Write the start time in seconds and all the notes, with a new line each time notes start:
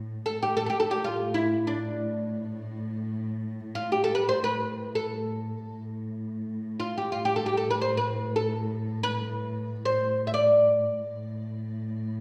Already playing: A2
0.26 A4
0.30 A2
0.42 G4
0.57 A4
0.66 G4 A4
0.80 A4
0.91 G4
1.04 F4
1.34 E4
1.67 D4
3.75 F4
3.92 G4
4.04 A4
4.15 B4
4.29 C5
4.44 B4
4.95 A4
5.67 A2
6.80 F4
6.98 G4
7.12 F4
7.25 G4
7.36 A4
7.46 G4
7.57 A4
7.70 B4
7.81 C5
7.97 B4
8.36 A4
9.03 B4
9.85 C5
10.27 E5
10.34 D5
11.01 A2